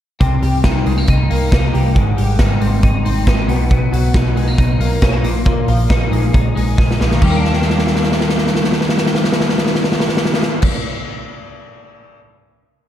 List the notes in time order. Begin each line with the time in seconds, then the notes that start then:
0.20 C2 C3, kick, closed hi-hat
0.42 C2 G3, open hi-hat
0.64 C2 D#4, kick, snare, closed hi-hat
0.86 C2 G#3, open hi-hat
0.98 A#3
1.07 C2 D#4, kick, closed hi-hat
1.30 C2 A#3, open hi-hat
1.52 C2 D#4, kick, snare, closed hi-hat
1.73 C2 G3, open hi-hat
1.95 G#1 G#2, kick, closed hi-hat
2.17 G#1 G3, open hi-hat
2.39 G#1 D#4, kick, snare, closed hi-hat
2.61 G#1 C4, open hi-hat
2.83 G#1 D#4, kick, closed hi-hat
3.05 G#1 C4, open hi-hat
3.27 G#1 D#4, kick, snare, closed hi-hat
3.48 B1 B2, open hi-hat
3.70 B2, kick, closed hi-hat
3.92 B1 F#3, open hi-hat
4.14 B1 D#4, kick, snare, closed hi-hat
4.36 B1 G#3, open hi-hat
4.48 A#3
4.58 B1 D#4, kick, closed hi-hat
4.79 B1 A#3, open hi-hat
5.02 B1 C#4, kick, snare, closed hi-hat
5.13 D#4
5.23 A#1 A#2, open hi-hat
5.45 A#2, kick, closed hi-hat
5.68 A#1 F3, open hi-hat
5.90 D#4, kick, snare, closed hi-hat
6.12 A#1 G#3, open hi-hat
6.33 A#1 D#4, kick, closed hi-hat
6.55 A#1 G#3, open hi-hat
6.77 A#1 D#4, kick, snare
6.91 snare
7.00 A#1 F3, snare
7.11 D#3, snare
7.22 D#2 G3, kick, crash
7.30 A#3
7.37 D4
7.45 snare
7.53 snare
7.62 snare
7.70 snare
7.79 snare
7.87 snare
7.96 snare
8.04 snare
8.12 snare
8.21 snare
8.29 snare
8.38 snare
8.47 snare
8.55 snare
8.64 snare
8.73 snare
8.81 snare
8.89 snare
8.98 snare
9.06 snare
9.15 snare
9.24 snare
9.32 snare
9.40 snare
9.49 snare
9.58 snare
9.67 snare
9.75 snare
9.84 snare
9.92 snare
10.00 snare
10.09 snare
10.17 snare
10.25 snare
10.34 snare
10.43 snare
10.62 kick, crash